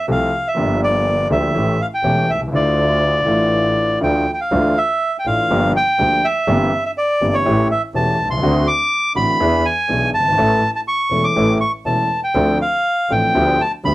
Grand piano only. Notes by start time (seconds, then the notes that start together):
0.08 C2 C3 F3 A3 C4 A4
0.55 G1 G2 F3 A#3 D4
0.59 G4
1.30 D2 D3 F3 A#3 D4 G4
1.55 A1 A2 E3 A3 C#4 G4
2.04 E1 E2 E3 A3 C#4 G4
2.35 B1
2.41 C2
2.48 C#2 E4
2.53 D2 D3 A3 D4 F4
3.24 A1 A2 A3 D4 E4 F4
4.01 D2 D3 E3 A3 D4 F4
4.52 D2 D3 E3 A3 D4 F4
5.26 A1 A2 E3 A3 D4 F4
5.51 G1 G2 F3 A#3 D4 G4
5.99 D2 D3 F3 A#3 D4 G4
6.48 G1 G2 E3 A#3 C4 G4
7.21 G1 G2 E3 A#3 C4 G4
7.45 A1 A2 E3 A3 C#4 G4
7.94 E1 E2 E3 A3 C#4 G4
8.25 B1
8.32 C2
8.38 C#2
8.43 D2 D3 A3 C4 F#4
9.15 A1 A2 D3 A3 C4 F#4
9.40 E2 E3 B3 D4 G#4
9.89 B1 B2 E3 B3 D4 G#4
10.20 F#1
10.26 G1
10.32 G#1
10.38 A1 A2 E3 A3 C#4 A4
11.11 E1 E2 E3 A3 C#4 A4
11.36 A1 A2 E3 A3 C#4 A4
11.85 E1 E2 E3 A3 C#4 A4
12.35 D2 D3 F3 C4 D4 A4
13.10 A1 A2 F3 C4 D4 A4
13.35 D2 D3 F3 B3 D4 G4
13.84 D2 D3 F3 B3 D4 G4